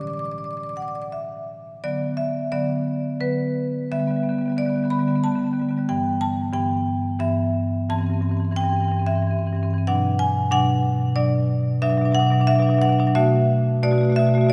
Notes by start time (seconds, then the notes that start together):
Already playing: D3 F#3 C#4
0.01 D5 D6
0.07 D5 D6
0.14 D5 D6
0.19 D6
0.24 D5 D6
0.32 D5 D6
0.38 D5 D6
0.44 D5 D6
0.51 D5 D6
0.57 D5 D6
0.63 D5 D6
0.69 D6
0.73 D5 F#5 D6
0.80 D5 D6
0.87 D5 D6
0.95 D5 D6
1.02 D5 D6
1.12 E5
1.84 D3 F#3 B3 D5
2.17 E5
2.52 D3 F#3 B3 D5
3.20 D3 F#3 B3 B4
3.91 D3 G3 B3 E5
4.00 D3 G3 B3
4.08 D3 G3 B3
4.15 G3 B3
4.20 D3 G3 B3
4.29 D3 G3 B3
4.38 D3 G3 B3
4.46 D3 G3 B3
4.52 B3
4.57 D3 G3 D5
4.61 G3 B3
4.66 D3 B3
4.74 D3 G3
4.78 B3
4.83 D3 G3 B3
4.90 D3 G3 B3 B5
4.99 D3 G3 B3
5.07 D3 G3 B3
5.16 D3 G3 B3
5.24 D3 G3 B3 A5
5.32 D3 G3 B3
5.39 G3 B3
5.44 D3 B3
5.51 D3 G3 B3
5.59 D3 G3 B3
5.69 D3 G3 B3
5.77 D3 G3 B3
5.89 G2 E3 B3 G5
6.21 A5
6.53 G2 E3 B3 G5
7.19 G2 E3 B3 E5
7.90 G2 E3 C4 A5
7.98 G2 E3 C4
8.06 G2 C4
8.12 E3 C4
8.21 G2 E3 C4
8.29 G2 E3 C4
8.37 E3 C4
8.41 G2 C4
8.51 G2 E3 C4
8.56 G5
8.61 G2 E3 C4
8.69 G2 E3 C4
8.77 E3 C4
8.82 G2 C4
8.88 G2 E3 C4
8.97 E3 C4
9.02 G2
9.07 E3 C4 E5
9.13 G2 C4
9.18 E3
9.22 G2 C4
9.27 E3 C4
9.32 G2
9.37 E3 C4
9.42 G2
9.47 E3 C4
9.52 G2 E3 C4
9.63 G2 E3 C4
9.71 G2 E3 C4
9.78 C4
9.87 B2 F#3 D4 F#5
10.19 G#5
10.51 B2 F#3 D4 F#5
11.16 B2 F#3 D4 D5
11.82 B2 F#3 D4 E5
11.90 B2 F#3 D4
11.98 B2 F#3 D4
12.05 F#3 D4
12.11 B2 F#3 D4 F#5
12.19 B2 F#3 D4
12.27 B2 D4
12.32 F#3 D4
12.40 B2 F#3 D4
12.47 B2 F#3 D4 E5
12.56 F#3 D4
12.60 B2 D4
12.67 B2 F#3 D4
12.74 F#3 D4
12.79 B2 F#3 F#5
12.85 D4
12.89 B2 F#3 D4
12.98 B2 F#3 D4
13.07 F#3 D4
13.15 B2 A3 F#4 E5
13.83 B2 A3 F#4 D5
13.91 B2 A3 F#4
13.98 A3 F#4
14.03 B2 F#4
14.10 B2 A3 F#4
14.16 B2 A3 F#4 E5
14.26 B2 A3 F#4
14.34 B2 A3 F#4
14.41 A3 F#4
14.46 B2 F#4 D5